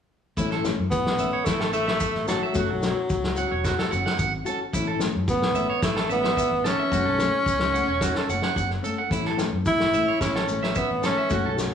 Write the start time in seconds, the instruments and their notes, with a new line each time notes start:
0.37 fingered electric bass A1, nylon-string guitar E3 A3 C#4, clean electric guitar E4, kick, maracas
0.51 clean electric guitar A4, snare
0.63 nylon-string guitar A3 C#4, snare, maracas
0.79 fingered electric bass F#2
0.91 fingered electric bass A1, tenor saxophone B3, kick, maracas
1.06 fingered electric bass A1, snare
1.19 fingered electric bass A1, nylon-string guitar A3 C#4, clean electric guitar E5, maracas
1.33 clean electric guitar C#5
1.45 fingered electric bass A1, tenor saxophone A3, clean electric guitar E4, kick, snare, maracas
1.60 clean electric guitar A4, snare
1.72 tenor saxophone A3, nylon-string guitar A3 C#4, clean electric guitar E5, maracas
1.87 clean electric guitar E5, snare
2.00 clean electric guitar E5, kick, maracas
2.15 fingered electric bass A1, snare
2.26 tenor saxophone F#3, nylon-string guitar A3 C#4, clean electric guitar A4, snare, maracas
2.43 clean electric guitar E5
2.53 fingered electric bass F#1, nylon-string guitar A3 C#4 F#4, clean electric guitar F#4, kick, maracas
2.70 fingered electric bass B1, muted clean electric guitar stroke
2.80 nylon-string guitar C#4 F#4, snare, maracas
3.10 fingered electric bass C#2, kick, maracas
3.24 snare
3.35 nylon-string guitar C#4 F#4, clean electric guitar F#5, maracas
3.51 fingered electric bass E1, clean electric guitar C#5
3.65 clean electric guitar F#4, kick, snare, maracas
3.79 clean electric guitar A4, snare
3.90 fingered electric bass F#1, nylon-string guitar C#4 F#4, clean electric guitar F#5, maracas
4.06 clean electric guitar F#5, snare
4.19 fingered electric bass G#1, clean electric guitar F#5, kick, maracas
4.45 nylon-string guitar C#4 F#4, clean electric guitar A4, maracas
4.73 fingered electric bass A1, nylon-string guitar E3 A3 C#4, clean electric guitar E4, kick, maracas
4.88 clean electric guitar A4
4.99 nylon-string guitar A3 C#4, snare, maracas
5.16 fingered electric bass F#2
5.28 fingered electric bass A1, tenor saxophone B3, kick, maracas
5.42 fingered electric bass A1, snare
5.54 fingered electric bass A1, nylon-string guitar A3 C#4, clean electric guitar E5, maracas
5.70 clean electric guitar C#5
5.82 fingered electric bass A1, tenor saxophone A3, clean electric guitar E4, kick, snare, maracas
5.96 clean electric guitar A4, snare
6.09 nylon-string guitar A3 C#4, tenor saxophone B3, clean electric guitar E5, maracas
6.24 clean electric guitar E5, snare
6.37 clean electric guitar E5, kick, maracas
6.51 fingered electric bass A1
6.64 nylon-string guitar A3 C#4, tenor saxophone C#4, clean electric guitar A4, snare, maracas
6.79 clean electric guitar E5
6.91 fingered electric bass F#1, nylon-string guitar F#3 A3 C#4, clean electric guitar F#4, kick, maracas
7.05 fingered electric bass B1, clean electric guitar A4
7.18 nylon-string guitar A3 C#4, snare, maracas
7.46 fingered electric bass C#2, kick, maracas
7.59 snare
7.74 nylon-string guitar A3 C#4, clean electric guitar F#5, maracas
7.88 fingered electric bass E1, clean electric guitar C#5
8.01 clean electric guitar F#4, kick, snare, maracas
8.15 clean electric guitar A4, snare
8.29 fingered electric bass F#1, nylon-string guitar A3 C#4, clean electric guitar F#5, maracas
8.42 clean electric guitar F#5, snare
8.56 fingered electric bass F#1, clean electric guitar F#5, kick, maracas
8.70 snare
8.82 nylon-string guitar A3 C#4, clean electric guitar A4, maracas
8.98 clean electric guitar F#5
9.09 fingered electric bass A1, nylon-string guitar E3 A3 C#4, clean electric guitar E4, kick, maracas
9.25 clean electric guitar A4, snare
9.37 nylon-string guitar A3 C#4, snare, maracas
9.53 fingered electric bass F#2
9.66 fingered electric bass A1, tenor saxophone E4, kick, maracas
9.80 fingered electric bass A1, snare
9.93 fingered electric bass A1, nylon-string guitar A3 C#4, clean electric guitar E5, maracas
10.08 clean electric guitar C#5
10.21 fingered electric bass A1, tenor saxophone C#4, clean electric guitar E4, kick, snare, maracas
10.36 clean electric guitar A4, snare
10.47 nylon-string guitar A3 C#4, maracas
10.63 clean electric guitar E5, snare
10.75 tenor saxophone B3, clean electric guitar E5, kick, maracas
10.91 fingered electric bass A1
11.01 nylon-string guitar A3 C#4, clean electric guitar A4, snare, maracas
11.06 tenor saxophone C#4
11.18 clean electric guitar E5
11.30 fingered electric bass F#1, nylon-string guitar A3 C#4 F#4, clean electric guitar F#4, kick, maracas
11.45 fingered electric bass B1, clean electric guitar A4
11.56 nylon-string guitar C#4 F#4, snare, maracas